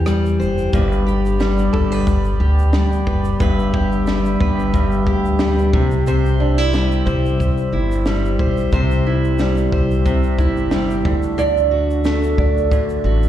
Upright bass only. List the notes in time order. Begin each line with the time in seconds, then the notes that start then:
Already playing: E2
0.40 F#1
0.73 G1
1.74 G1
2.40 D2
3.07 F#1
3.40 G1
4.41 G1
5.06 D2
5.74 C2
7.07 C2
7.72 G1
8.39 B1
8.72 C2
9.72 C2
10.38 G1
11.05 D2
12.38 D2
13.04 A1